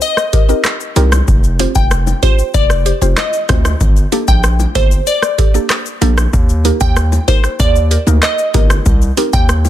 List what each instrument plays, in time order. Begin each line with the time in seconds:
0.02 synth pluck D#5, shaker
0.17 cross-stick, shaker
0.33 synth pluck G4 A#4, kick, closed hi-hat, shaker
0.49 synth pluck C4 D#4 G4 A#4, shaker
0.64 cross-stick, clap, shaker
0.80 shaker
0.96 808-style bass C2, synth pluck C4 D#4 G4 A#4, closed hi-hat, high bongo, low bongo, shaker
1.12 cross-stick, high bongo, shaker
1.28 808-style bass F1, kick, shaker
1.44 shaker
1.59 synth pluck C4 F4 G4 C5, closed hi-hat, high bongo, shaker
1.75 808-style bass F1, synth pluck G5, kick, shaker
1.91 cross-stick, shaker
2.07 high bongo, shaker
2.23 synth pluck C4 F4 G4 C5, kick, closed hi-hat, high bongo, shaker
2.39 shaker
2.54 808-style bass F1, synth pluck D5, kick, shaker
2.70 cross-stick, shaker
2.86 synth pluck G4 C5, closed hi-hat, shaker
3.01 808-style bass F1, synth pluck C4 F4 G4 C5, shaker
3.17 synth pluck D#5, cross-stick, clap, high bongo, shaker
3.33 shaker
3.49 808-style bass D2, synth pluck C4 F4 G4 C5, kick, cross-stick, closed hi-hat, high bongo, low bongo, shaker
3.65 cross-stick, high bongo, shaker
3.81 808-style bass G1, kick, shaker
3.97 shaker
4.12 synth pluck A#3 D4 G4 A4, closed hi-hat, high bongo, shaker
4.28 808-style bass A#1, synth pluck G5, kick, shaker
4.44 cross-stick, shaker
4.60 high bongo, shaker
4.75 808-style bass G1, synth pluck A#3 D4 G4 A4 C5, kick, closed hi-hat, high bongo, shaker
4.91 shaker
5.07 synth pluck D5, shaker
5.22 cross-stick, shaker
5.38 synth pluck G4 A4, kick, closed hi-hat, shaker
5.54 synth pluck A#3 D4 G4 A4, shaker
5.70 cross-stick, clap, shaker
5.86 shaker
6.01 808-style bass A#1, synth pluck A#3 D4 G4 A4, closed hi-hat, high bongo, low bongo, shaker
6.18 cross-stick, high bongo, shaker
6.33 808-style bass D#2, kick, shaker
6.49 shaker
6.65 synth pluck A#3 D#4 G4 A#4, closed hi-hat, high bongo, shaker
6.81 808-style bass D#2, synth pluck G5, kick, shaker
6.96 cross-stick, shaker
7.12 high bongo, shaker
7.28 synth pluck A#3 D#4 G4 A#4 C5, kick, closed hi-hat, high bongo, shaker
7.44 cross-stick, shaker
7.60 808-style bass D#2, synth pluck D5, kick, shaker
7.76 shaker
7.91 synth pluck G4 A#4, closed hi-hat, shaker
8.07 808-style bass D2, synth pluck A#3 D#4 G4 A#4, shaker
8.22 synth pluck D#5, cross-stick, clap, shaker
8.38 shaker
8.54 808-style bass G1, synth pluck A#3 D#4 G4 A#4, kick, closed hi-hat, high bongo, low bongo, shaker
8.70 cross-stick, high bongo, shaker
8.86 808-style bass C2, kick, shaker
9.02 shaker
9.17 synth pluck C4 D#4 G4 A#4, closed hi-hat, high bongo, shaker
9.33 808-style bass D#2, synth pluck G5, kick, shaker
9.49 cross-stick, shaker
9.65 high bongo, shaker